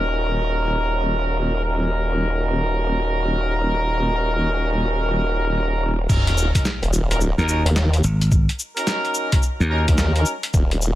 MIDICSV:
0, 0, Header, 1, 6, 480
1, 0, Start_track
1, 0, Key_signature, -6, "minor"
1, 0, Tempo, 555556
1, 1424, Time_signature, 4, 2, 24, 8
1, 9463, End_track
2, 0, Start_track
2, 0, Title_t, "Horn section"
2, 0, Program_c, 0, 61
2, 0, Note_on_c, 0, 61, 76
2, 0, Note_on_c, 0, 63, 73
2, 0, Note_on_c, 0, 66, 73
2, 0, Note_on_c, 0, 70, 88
2, 1404, Note_off_c, 0, 61, 0
2, 1404, Note_off_c, 0, 63, 0
2, 1404, Note_off_c, 0, 66, 0
2, 1404, Note_off_c, 0, 70, 0
2, 1422, Note_on_c, 0, 61, 77
2, 1423, Note_on_c, 0, 66, 78
2, 1424, Note_on_c, 0, 63, 72
2, 1424, Note_on_c, 0, 70, 91
2, 5118, Note_off_c, 0, 61, 0
2, 5118, Note_off_c, 0, 63, 0
2, 5118, Note_off_c, 0, 66, 0
2, 5118, Note_off_c, 0, 70, 0
2, 5265, Note_on_c, 0, 63, 93
2, 5267, Note_on_c, 0, 61, 100
2, 5267, Note_on_c, 0, 66, 93
2, 5267, Note_on_c, 0, 70, 113
2, 5596, Note_off_c, 0, 63, 0
2, 5597, Note_off_c, 0, 61, 0
2, 5597, Note_off_c, 0, 66, 0
2, 5597, Note_off_c, 0, 70, 0
2, 5659, Note_on_c, 0, 61, 77
2, 5660, Note_on_c, 0, 63, 67
2, 5660, Note_on_c, 0, 66, 72
2, 5660, Note_on_c, 0, 70, 81
2, 5731, Note_off_c, 0, 61, 0
2, 5732, Note_off_c, 0, 63, 0
2, 5732, Note_off_c, 0, 66, 0
2, 5732, Note_off_c, 0, 70, 0
2, 6140, Note_on_c, 0, 61, 78
2, 6140, Note_on_c, 0, 63, 72
2, 6140, Note_on_c, 0, 66, 75
2, 6141, Note_on_c, 0, 70, 89
2, 6211, Note_off_c, 0, 61, 0
2, 6212, Note_off_c, 0, 63, 0
2, 6212, Note_off_c, 0, 66, 0
2, 6212, Note_off_c, 0, 70, 0
2, 6377, Note_on_c, 0, 63, 74
2, 6377, Note_on_c, 0, 70, 93
2, 6378, Note_on_c, 0, 61, 76
2, 6378, Note_on_c, 0, 66, 76
2, 6443, Note_off_c, 0, 61, 0
2, 6443, Note_off_c, 0, 63, 0
2, 6443, Note_off_c, 0, 70, 0
2, 6444, Note_off_c, 0, 66, 0
2, 6463, Note_on_c, 0, 66, 80
2, 6464, Note_on_c, 0, 61, 90
2, 6465, Note_on_c, 0, 63, 82
2, 6465, Note_on_c, 0, 70, 97
2, 6592, Note_off_c, 0, 61, 0
2, 6592, Note_off_c, 0, 66, 0
2, 6593, Note_off_c, 0, 63, 0
2, 6593, Note_off_c, 0, 70, 0
2, 7573, Note_on_c, 0, 61, 95
2, 7573, Note_on_c, 0, 63, 89
2, 7573, Note_on_c, 0, 70, 102
2, 7574, Note_on_c, 0, 66, 87
2, 8018, Note_off_c, 0, 61, 0
2, 8018, Note_off_c, 0, 63, 0
2, 8018, Note_off_c, 0, 66, 0
2, 8018, Note_off_c, 0, 70, 0
2, 8058, Note_on_c, 0, 61, 83
2, 8059, Note_on_c, 0, 63, 73
2, 8059, Note_on_c, 0, 70, 88
2, 8060, Note_on_c, 0, 66, 73
2, 8131, Note_off_c, 0, 61, 0
2, 8131, Note_off_c, 0, 63, 0
2, 8131, Note_off_c, 0, 70, 0
2, 8132, Note_off_c, 0, 66, 0
2, 8381, Note_on_c, 0, 63, 77
2, 8381, Note_on_c, 0, 66, 83
2, 8382, Note_on_c, 0, 61, 88
2, 8382, Note_on_c, 0, 70, 101
2, 8498, Note_off_c, 0, 63, 0
2, 8498, Note_off_c, 0, 66, 0
2, 8499, Note_off_c, 0, 61, 0
2, 8499, Note_off_c, 0, 70, 0
2, 8536, Note_on_c, 0, 61, 81
2, 8536, Note_on_c, 0, 63, 74
2, 8537, Note_on_c, 0, 66, 73
2, 8537, Note_on_c, 0, 70, 90
2, 8739, Note_off_c, 0, 61, 0
2, 8739, Note_off_c, 0, 63, 0
2, 8740, Note_off_c, 0, 66, 0
2, 8740, Note_off_c, 0, 70, 0
2, 8775, Note_on_c, 0, 70, 98
2, 8776, Note_on_c, 0, 63, 82
2, 8777, Note_on_c, 0, 61, 89
2, 8777, Note_on_c, 0, 66, 81
2, 8916, Note_off_c, 0, 70, 0
2, 8917, Note_off_c, 0, 61, 0
2, 8917, Note_off_c, 0, 63, 0
2, 8917, Note_off_c, 0, 66, 0
2, 9463, End_track
3, 0, Start_track
3, 0, Title_t, "Slap bass"
3, 0, Program_c, 1, 36
3, 6377, Note_on_c, 1, 39, 91
3, 6592, Note_off_c, 1, 39, 0
3, 6946, Note_on_c, 1, 32, 100
3, 7313, Note_off_c, 1, 32, 0
3, 8296, Note_on_c, 1, 39, 98
3, 8512, Note_off_c, 1, 39, 0
3, 9463, End_track
4, 0, Start_track
4, 0, Title_t, "Wobble bass"
4, 0, Program_c, 2, 39
4, 0, Note_on_c, 2, 27, 87
4, 5246, Note_off_c, 2, 27, 0
4, 5263, Note_on_c, 2, 27, 97
4, 5632, Note_off_c, 2, 27, 0
4, 5896, Note_on_c, 2, 27, 97
4, 6216, Note_off_c, 2, 27, 0
4, 6216, Note_on_c, 2, 26, 97
4, 6352, Note_off_c, 2, 26, 0
4, 6613, Note_on_c, 2, 39, 101
4, 6928, Note_off_c, 2, 39, 0
4, 8538, Note_on_c, 2, 39, 97
4, 8851, Note_off_c, 2, 39, 0
4, 9103, Note_on_c, 2, 27, 101
4, 9463, Note_off_c, 2, 27, 0
4, 9463, End_track
5, 0, Start_track
5, 0, Title_t, "Sub drop"
5, 0, Program_c, 3, 103
5, 5263, Note_on_c, 3, 60, 75
5, 7183, Note_off_c, 3, 60, 0
5, 9463, End_track
6, 0, Start_track
6, 0, Title_t, "Drums"
6, 5265, Note_on_c, 9, 36, 122
6, 5267, Note_on_c, 9, 49, 105
6, 5267, Note_on_c, 9, 82, 42
6, 5352, Note_off_c, 9, 36, 0
6, 5354, Note_off_c, 9, 49, 0
6, 5354, Note_off_c, 9, 82, 0
6, 5420, Note_on_c, 9, 42, 57
6, 5420, Note_on_c, 9, 82, 22
6, 5507, Note_off_c, 9, 42, 0
6, 5507, Note_off_c, 9, 82, 0
6, 5509, Note_on_c, 9, 82, 75
6, 5595, Note_off_c, 9, 82, 0
6, 5659, Note_on_c, 9, 36, 105
6, 5661, Note_on_c, 9, 42, 66
6, 5661, Note_on_c, 9, 82, 32
6, 5745, Note_off_c, 9, 36, 0
6, 5747, Note_off_c, 9, 82, 0
6, 5747, Note_on_c, 9, 38, 120
6, 5747, Note_on_c, 9, 82, 40
6, 5748, Note_off_c, 9, 42, 0
6, 5834, Note_off_c, 9, 38, 0
6, 5834, Note_off_c, 9, 82, 0
6, 5899, Note_on_c, 9, 42, 38
6, 5899, Note_on_c, 9, 82, 21
6, 5985, Note_off_c, 9, 42, 0
6, 5985, Note_off_c, 9, 82, 0
6, 5989, Note_on_c, 9, 82, 74
6, 6075, Note_off_c, 9, 82, 0
6, 6143, Note_on_c, 9, 37, 39
6, 6143, Note_on_c, 9, 42, 69
6, 6143, Note_on_c, 9, 82, 31
6, 6229, Note_off_c, 9, 82, 0
6, 6229, Note_on_c, 9, 82, 42
6, 6230, Note_off_c, 9, 37, 0
6, 6230, Note_off_c, 9, 42, 0
6, 6315, Note_off_c, 9, 82, 0
6, 6381, Note_on_c, 9, 82, 21
6, 6467, Note_off_c, 9, 82, 0
6, 6467, Note_on_c, 9, 82, 73
6, 6553, Note_off_c, 9, 82, 0
6, 6620, Note_on_c, 9, 42, 67
6, 6620, Note_on_c, 9, 82, 31
6, 6705, Note_off_c, 9, 82, 0
6, 6705, Note_on_c, 9, 38, 118
6, 6705, Note_on_c, 9, 82, 42
6, 6706, Note_off_c, 9, 42, 0
6, 6791, Note_off_c, 9, 38, 0
6, 6791, Note_off_c, 9, 82, 0
6, 6856, Note_on_c, 9, 42, 54
6, 6856, Note_on_c, 9, 82, 21
6, 6942, Note_off_c, 9, 42, 0
6, 6942, Note_off_c, 9, 82, 0
6, 6943, Note_on_c, 9, 82, 77
6, 7029, Note_off_c, 9, 82, 0
6, 7097, Note_on_c, 9, 42, 69
6, 7097, Note_on_c, 9, 82, 32
6, 7183, Note_off_c, 9, 82, 0
6, 7183, Note_on_c, 9, 82, 41
6, 7184, Note_off_c, 9, 42, 0
6, 7185, Note_on_c, 9, 36, 124
6, 7270, Note_off_c, 9, 82, 0
6, 7271, Note_off_c, 9, 36, 0
6, 7337, Note_on_c, 9, 42, 57
6, 7337, Note_on_c, 9, 82, 22
6, 7424, Note_off_c, 9, 42, 0
6, 7424, Note_off_c, 9, 82, 0
6, 7424, Note_on_c, 9, 82, 69
6, 7511, Note_off_c, 9, 82, 0
6, 7577, Note_on_c, 9, 42, 70
6, 7577, Note_on_c, 9, 82, 30
6, 7663, Note_off_c, 9, 42, 0
6, 7663, Note_off_c, 9, 82, 0
6, 7664, Note_on_c, 9, 38, 123
6, 7664, Note_on_c, 9, 82, 42
6, 7750, Note_off_c, 9, 38, 0
6, 7750, Note_off_c, 9, 82, 0
6, 7817, Note_on_c, 9, 42, 41
6, 7817, Note_on_c, 9, 82, 21
6, 7900, Note_off_c, 9, 82, 0
6, 7900, Note_on_c, 9, 82, 68
6, 7903, Note_off_c, 9, 42, 0
6, 7987, Note_off_c, 9, 82, 0
6, 8055, Note_on_c, 9, 37, 36
6, 8055, Note_on_c, 9, 42, 68
6, 8055, Note_on_c, 9, 82, 31
6, 8057, Note_on_c, 9, 36, 102
6, 8141, Note_off_c, 9, 37, 0
6, 8141, Note_off_c, 9, 42, 0
6, 8141, Note_off_c, 9, 82, 0
6, 8144, Note_off_c, 9, 36, 0
6, 8144, Note_on_c, 9, 82, 39
6, 8230, Note_off_c, 9, 82, 0
6, 8300, Note_on_c, 9, 82, 21
6, 8386, Note_off_c, 9, 82, 0
6, 8536, Note_on_c, 9, 42, 69
6, 8536, Note_on_c, 9, 82, 30
6, 8538, Note_on_c, 9, 36, 113
6, 8622, Note_off_c, 9, 82, 0
6, 8622, Note_on_c, 9, 37, 54
6, 8622, Note_on_c, 9, 38, 120
6, 8622, Note_on_c, 9, 82, 42
6, 8623, Note_off_c, 9, 42, 0
6, 8624, Note_off_c, 9, 36, 0
6, 8708, Note_off_c, 9, 37, 0
6, 8708, Note_off_c, 9, 38, 0
6, 8708, Note_off_c, 9, 82, 0
6, 8775, Note_on_c, 9, 42, 55
6, 8775, Note_on_c, 9, 82, 20
6, 8861, Note_off_c, 9, 42, 0
6, 8861, Note_off_c, 9, 82, 0
6, 8861, Note_on_c, 9, 82, 72
6, 8947, Note_off_c, 9, 82, 0
6, 9014, Note_on_c, 9, 42, 70
6, 9014, Note_on_c, 9, 82, 31
6, 9101, Note_off_c, 9, 42, 0
6, 9101, Note_off_c, 9, 82, 0
6, 9103, Note_on_c, 9, 82, 41
6, 9104, Note_on_c, 9, 36, 127
6, 9190, Note_off_c, 9, 82, 0
6, 9191, Note_off_c, 9, 36, 0
6, 9257, Note_on_c, 9, 42, 55
6, 9257, Note_on_c, 9, 82, 22
6, 9343, Note_off_c, 9, 42, 0
6, 9343, Note_off_c, 9, 82, 0
6, 9345, Note_on_c, 9, 82, 68
6, 9432, Note_off_c, 9, 82, 0
6, 9463, End_track
0, 0, End_of_file